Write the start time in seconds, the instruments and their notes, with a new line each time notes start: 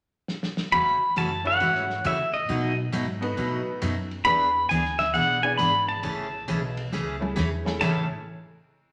0.28 snare
0.43 snare
0.57 snare
0.72 upright bass E2, steel-string acoustic guitar C#3 E3 A3 C#4 F#4, pedal steel guitar B5, ride
1.16 upright bass F#2, steel-string acoustic guitar C#3 E3 A3 C#4 F#4, pedal steel guitar A5, hi-hat pedal, ride
1.44 honky-tonk piano C#4 E4 F#4 A4 C#5, pedal steel guitar F#5, ride
1.60 upright bass G#2, steel-string acoustic guitar C#3 E3 A3 C#4 F#4, ride
1.75 snare
1.90 snare
2.04 upright bass A2, steel-string acoustic guitar C#3 E3 A3 C#4 F#4, pedal steel guitar E5, hi-hat pedal, ride
2.34 pedal steel guitar D#5, ride
2.49 upright bass B2, steel-string acoustic guitar B2 F#3 A3 D#4 F#4, ride
2.92 upright bass G#2, steel-string acoustic guitar B2 F#3 A3 D#4 F#4, hi-hat pedal, ride
3.21 honky-tonk piano B3 D#4 F#4 A4 B4, ride
3.37 upright bass A2, steel-string acoustic guitar B2 F#3 A3 D#4 F#4
3.82 upright bass F#2, steel-string acoustic guitar B2 F#3 A3 D#4 F#4, hi-hat pedal, ride
4.11 ride
4.24 upright bass E2, steel-string acoustic guitar E3 B3 D4 G#4, honky-tonk piano B3 D4 E4 G#4 B4, pedal steel guitar B5, ride
4.69 upright bass D2, steel-string acoustic guitar E3 B3 D4 G#4, pedal steel guitar G#5, hi-hat pedal, ride
4.85 snare
4.99 pedal steel guitar E5, snare, ride
5.14 upright bass B1, steel-string acoustic guitar E3 B3 D4 G#4, pedal steel guitar F#5, ride
5.43 honky-tonk piano B3 D4 E4 G#4 D5, pedal steel guitar G#5
5.57 upright bass G#1, steel-string acoustic guitar E3 B3 D4 G#4, pedal steel guitar B5, hi-hat pedal, ride
5.88 pedal steel guitar A5, ride
6.03 upright bass A1, steel-string acoustic guitar C#3 E3 A3 C#4 G#4, ride
6.48 upright bass B1, steel-string acoustic guitar C#3 E3 A3 C#4 G#4, hi-hat pedal, ride
6.77 ride
6.92 upright bass C#2, steel-string acoustic guitar C#3 E3 A3 C#4 G#4, snare
7.20 honky-tonk piano A3 C#4 E4 G#4 A4, high tom
7.36 upright bass E2, steel-string acoustic guitar C#3 E3 A3 C#4 G#4, snare, hi-hat pedal
7.65 honky-tonk piano A3 C#4 E4 G#4 A4, snare
7.80 upright bass A1, steel-string acoustic guitar A2 C#3 E3 A3 C#4 G#4, honky-tonk piano A3 C#4 E4 G#4 A4, pedal steel guitar A5, kick, snare, crash